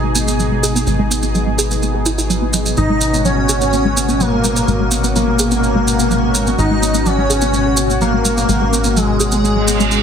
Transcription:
0.00 0.85 G#1 medium
0.00 10.03 G#2 medium
0.00 10.03 B2 medium
0.00 10.03 G#3 medium
0.00 0.12 G#3 medium
0.00 2.73 D#4 medium
0.00 2.76 G#4 medium
0.15 0.27 B3 medium
0.15 maracas medium
0.28 0.35 B3 medium
0.28 maracas soft
0.39 0.47 F#3 medium
0.39 maracas soft
0.52 0.56 G#3 medium
0.63 0.71 G#4 loud
0.63 maracas medium
0.75 0.80 B3 medium
0.75 maracas medium
0.87 2.75 G#1 medium
0.87 0.95 G#3 medium
0.87 maracas soft
0.99 1.07 G#3 medium
1.11 1.22 B3 medium
1.11 maracas medium
1.23 1.28 B3 medium
1.23 maracas soft
1.35 1.43 F#3 medium
1.35 maracas soft
1.47 1.58 G#3 medium
1.58 1.67 G#4 loud
1.58 maracas medium
1.71 1.75 B3 medium
1.71 maracas soft
1.82 1.90 A#3 medium
1.82 maracas soft
1.94 2.02 G#3 medium
2.06 2.17 E4 loud
2.06 maracas medium
2.18 2.23 E4 loud
2.18 maracas soft
2.30 2.38 F#3 medium
2.30 maracas soft
2.42 2.47 B3 medium
2.53 2.62 F#3 medium
2.53 maracas medium
2.66 2.74 G#3 medium
2.66 maracas medium
2.77 4.66 G#1 medium
2.77 2.86 G#3 medium
2.77 10.03 C#4 medium
2.77 3.21 D#4 medium
2.77 10.03 F#4 medium
2.77 3.21 D#5 loud
2.77 maracas soft
2.90 2.97 G#3 medium
3.01 3.12 B3 medium
3.01 maracas medium
3.13 3.18 B3 medium
3.13 maracas soft
3.25 3.33 F#3 medium
3.25 4.22 C#4 loud
3.25 4.22 C#5 loud
3.25 maracas soft
3.37 3.48 G#3 medium
3.49 3.57 G#4 loud
3.49 maracas medium
3.61 3.66 B3 medium
3.61 maracas medium
3.73 3.81 A#3 medium
3.73 maracas soft
3.85 3.93 G#3 medium
3.96 4.08 B3 medium
3.96 maracas medium
4.09 4.16 B3 medium
4.09 maracas soft
4.20 4.28 F#3 medium
4.20 5.06 A#3 medium
4.20 5.06 A#4 medium
4.20 maracas soft
4.33 4.37 G#3 medium
4.44 4.56 G#3 medium
4.44 maracas medium
4.56 4.61 B3 medium
4.56 maracas medium
4.68 6.56 G#1 medium
4.68 4.76 G#3 medium
4.68 maracas soft
4.80 4.88 G#3 medium
4.91 5.03 B3 medium
4.91 maracas medium
5.04 5.09 B3 medium
5.04 maracas soft
5.16 5.24 F#3 medium
5.16 6.49 A#3 loud
5.16 6.49 A#4 loud
5.16 maracas soft
5.28 5.39 G#3 medium
5.39 5.47 G#4 loud
5.39 maracas medium
5.51 5.56 B3 medium
5.51 maracas soft
5.63 5.71 A#3 medium
5.63 maracas soft
5.75 5.83 G#3 medium
5.87 5.98 B3 medium
5.87 maracas medium
5.99 6.07 B3 medium
5.99 maracas soft
6.11 6.19 F#3 medium
6.11 maracas soft
6.23 6.28 G#3 medium
6.35 6.46 G#3 medium
6.35 maracas medium
6.47 6.51 B3 medium
6.47 maracas soft
6.58 8.47 G#1 medium
6.58 6.67 G#3 medium
6.58 7.07 D#4 loud
6.58 7.07 D#5 loud
6.58 maracas soft
6.71 6.78 G#3 loud
6.82 6.93 B3 medium
6.82 maracas medium
6.94 6.99 B3 medium
6.94 maracas soft
7.06 7.14 F#3 medium
7.06 7.92 C#4 loud
7.06 7.92 C#5 loud
7.06 maracas soft
7.18 7.29 G#3 medium
7.30 7.38 G#4 loud
7.30 maracas medium
7.41 7.47 B3 medium
7.41 maracas soft
7.54 7.62 A#3 medium
7.54 maracas soft
7.66 7.74 G#3 medium
7.77 7.89 B3 medium
7.77 maracas medium
7.90 7.97 B3 medium
7.90 maracas soft
8.01 8.09 F#3 medium
8.01 8.98 A#3 loud
8.01 8.98 A#4 loud
8.01 maracas soft
8.13 8.18 G#3 medium
8.25 8.37 G#3 medium
8.25 maracas medium
8.37 8.42 B3 medium
8.37 maracas soft
8.49 10.03 G#1 medium
8.49 8.57 G#3 medium
8.49 maracas soft
8.61 8.69 G#3 medium
8.73 8.84 B3 medium
8.73 maracas medium
8.84 8.90 B3 medium
8.84 maracas soft
8.96 9.05 F#3 medium
8.96 10.03 G#3 loud
8.96 10.03 G#4 loud
8.96 maracas soft
9.09 9.20 G#3 medium
9.20 9.28 G#4 loud
9.20 maracas medium
9.32 9.37 B3 medium
9.32 maracas soft
9.44 9.52 A#3 medium
9.44 reverse cymbal medium
9.44 maracas soft
9.56 9.64 G#3 medium
9.68 9.76 B3 medium
9.68 maracas medium
9.80 9.88 G#3 medium
9.80 maracas soft
9.91 10.03 E4 medium
9.91 maracas soft

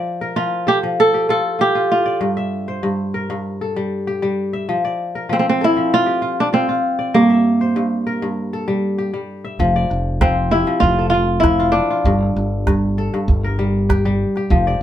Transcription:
0.00 0.35 F3 medium
0.00 0.56 G4 medium
0.00 1.02 D5 medium
0.00 0.42 E5 medium
0.21 0.73 A#4 medium
0.36 0.82 F3 medium
0.36 1.88 F4 medium
0.67 0.76 G4 medium
0.67 1.99 A4 medium
0.83 2.27 F3 medium
1.00 1.30 A4 medium
1.14 2.55 G4 medium
1.29 1.58 F4 medium
1.29 2.62 A4 medium
1.59 1.75 F4 medium
1.59 3.02 G4 medium
1.75 2.43 F4 medium
1.92 3.43 F4 medium
2.06 3.16 D5 medium
2.21 2.82 G2 medium
2.37 3.40 E5 medium
2.68 3.87 C5 medium
2.83 3.29 G2 medium
3.14 3.67 A#4 medium
3.30 4.73 G2 medium
3.61 4.93 A4 medium
3.76 4.21 G3 medium
4.07 5.49 G4 medium
4.22 4.73 G3 medium
4.53 5.35 E5 medium
4.69 5.28 F3 medium
4.85 5.95 D5 medium
5.15 5.67 A#4 medium
5.29 5.75 F3 medium
5.29 5.39 C4 medium
5.39 5.49 C4 medium
5.49 6.53 C4 medium
5.61 6.00 E4 medium
5.61 6.93 A4 medium
5.77 7.19 F3 medium
5.94 7.45 F4 medium
6.06 7.47 G4 medium
6.22 6.52 F4 medium
6.40 6.46 D4 medium
6.53 8.34 C4 medium
6.53 6.68 F4 medium
6.69 7.36 F4 medium
6.99 8.10 D5 medium
7.14 7.75 G2 medium
7.14 9.07 A#3 medium
7.30 8.33 E5 medium
7.61 8.80 C5 medium
7.76 8.21 G2 medium
8.07 8.59 A#4 medium
8.22 9.65 G2 medium
8.53 9.85 A4 medium
8.68 9.12 G3 medium
8.98 10.40 G4 medium
9.14 9.65 G3 medium
9.45 10.27 E5 medium
9.59 9.84 F1 loud
9.59 10.20 F3 medium
9.59 calabash thump medium
9.76 10.87 D5 medium
9.90 10.63 F1 medium
9.90 calabash click soft
10.21 10.66 F3 medium
10.21 12.01 C4 medium
10.21 calabash thump medium
10.21 calabash click medium
10.51 10.86 E4 medium
10.51 11.93 G4 medium
10.67 11.43 F3 medium
10.67 calabash click soft
10.80 11.79 F1 medium
10.80 11.09 F4 medium
10.80 calabash thump medium
10.99 12.30 A4 medium
11.10 11.46 F4 medium
11.14 11.59 F4 medium
11.40 12.97 E4 medium
11.40 calabash thump medium
11.40 calabash click medium
11.45 12.11 F3 medium
11.59 11.90 F4 medium
11.59 calabash click soft
11.72 13.40 D4 medium
11.90 13.42 F4 medium
11.90 calabash click soft
12.04 12.30 G1 loud
12.04 12.66 G2 medium
12.04 calabash thump medium
12.36 13.08 G1 medium
12.36 calabash click soft
12.67 13.13 G2 medium
12.67 calabash thump medium
12.67 calabash click medium
12.98 13.50 A4 medium
13.14 14.56 G2 medium
13.14 calabash click soft
13.28 14.24 G1 medium
13.28 calabash thump medium
13.44 14.72 A#4 medium
13.59 14.04 G3 medium
13.89 14.36 G4 medium
13.89 calabash thump medium
13.89 calabash click medium
14.05 14.56 G3 medium
14.05 calabash click soft
14.36 14.83 G4 medium
14.36 calabash click soft
14.50 14.75 F1 loud
14.50 14.83 F3 medium
14.50 calabash thump medium
14.67 14.83 D5 medium

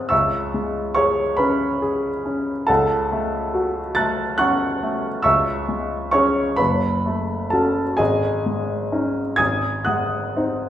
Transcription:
0.00 0.14 C4 soft
0.00 0.14 G#4 soft
0.00 0.14 C#5 medium
0.00 0.14 F#5 soft
0.00 0.14 G#5 medium
0.00 0.10 C#6 medium
0.00 0.14 D#6 medium
0.00 0.10 F#6 medium
0.00 0.14 G#6 medium
0.09 2.65 C#2 medium
0.09 0.92 E5 medium
0.09 0.92 C#6 medium
0.09 0.95 E6 medium
0.54 1.22 G#3 soft
0.95 1.65 G#4 medium
0.95 1.36 C#5 medium
0.95 1.38 C#6 medium
1.37 2.08 C#4 medium
1.37 2.64 B4 medium
1.37 2.67 B5 medium
1.82 2.51 G#4 medium
2.26 2.69 C#4 soft
2.67 5.20 C#2 medium
2.67 3.92 A4 medium
2.67 3.92 F#5 medium
2.67 3.95 A5 medium
3.12 3.79 A3 soft
3.54 4.22 F#4 soft
3.95 4.65 A3 soft
3.95 4.36 A5 medium
3.95 4.36 F#6 medium
3.95 4.38 A6 medium
4.38 5.07 C#4 medium
4.38 5.20 F#5 medium
4.38 5.20 C#6 medium
4.38 5.24 F#6 medium
4.83 5.25 A3 medium
5.23 6.55 C#2 medium
5.23 6.09 E5 medium
5.23 6.09 C#6 medium
5.23 6.12 E6 medium
5.69 6.40 G#3 soft
6.11 6.55 C#4 soft
6.11 6.56 G#4 medium
6.11 6.55 C#5 medium
6.11 6.58 C#6 medium
6.56 7.96 F#1 medium
6.56 7.48 B4 medium
6.56 7.51 B5 medium
7.06 7.81 A3 soft
7.50 7.96 C#4 soft
7.50 7.96 F#4 soft
7.50 7.96 A4 medium
7.50 7.98 A5 medium
7.97 9.35 G#1 medium
7.97 9.34 G#4 medium
7.97 9.34 D#5 medium
7.97 9.36 G#5 medium
8.46 9.20 G#3 soft
8.92 9.35 C#4 soft
8.92 9.35 D#4 soft
9.36 10.69 G#1 medium
9.36 9.84 G#5 medium
9.36 9.83 D#6 medium
9.36 9.86 G#6 medium
9.85 10.66 G#3 soft
9.85 10.69 F#5 medium
9.85 10.69 D#6 medium
9.85 10.69 F#6 medium
10.36 10.69 C4 soft
10.36 10.69 D#4 soft

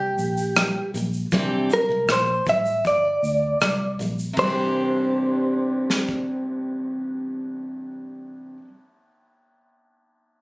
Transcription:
0.00 0.11 C2 medium
0.00 0.90 G4 medium
0.18 0.80 A#1 medium
0.18 shaker soft
0.37 shaker soft
0.56 0.86 C3 medium
0.56 0.87 E3 medium
0.56 0.88 G3 medium
0.56 cross-stick medium
0.56 shaker medium
0.94 1.25 A#1 medium
0.94 1.25 C3 medium
0.94 1.25 E3 medium
0.94 1.26 G3 medium
0.94 shaker soft
1.14 shaker soft
1.32 1.63 C2 medium
1.32 1.69 C3 medium
1.32 1.70 E3 medium
1.32 1.71 G3 medium
1.32 1.71 C4 medium
1.32 1.71 D4 medium
1.32 1.71 G4 medium
1.32 kick medium
1.32 shaker medium
1.70 1.87 C3 soft
1.70 1.89 E3 soft
1.70 1.90 G3 medium
1.70 2.11 A#4 medium
1.70 shaker soft
1.89 2.05 C2 medium
1.89 2.19 C3 soft
1.89 2.20 E3 soft
1.89 2.21 G3 soft
2.08 2.39 A#1 medium
2.08 cross-stick medium
2.08 shaker soft
2.12 2.46 C5 medium
2.46 2.85 A1 medium
2.46 2.77 C3 soft
2.46 2.78 E3 medium
2.46 2.79 G3 medium
2.46 2.87 E5 medium
2.46 kick medium
2.46 shaker soft
2.65 shaker soft
2.85 3.16 G1 medium
2.85 3.96 D5 medium
2.85 kick medium
2.85 shaker medium
3.23 3.54 D2 medium
3.23 shaker soft
3.61 3.92 C2 medium
3.61 3.91 C3 soft
3.61 3.92 E3 soft
3.61 3.93 G3 medium
3.61 cross-stick medium
3.61 shaker medium
3.99 4.31 A#1 medium
3.99 4.30 C3 soft
3.99 4.30 E3 medium
3.99 4.31 G3 medium
3.99 shaker soft
4.19 shaker soft
4.33 8.57 C3 medium
4.33 kick medium
4.33 ride medium
4.38 8.57 C2 medium
4.38 8.61 E3 medium
4.38 8.64 G3 medium
4.38 8.59 C5 medium
4.44 8.67 C4 medium
4.44 8.70 D4 medium
4.50 8.74 G4 medium
5.90 snare soft
6.09 kick medium

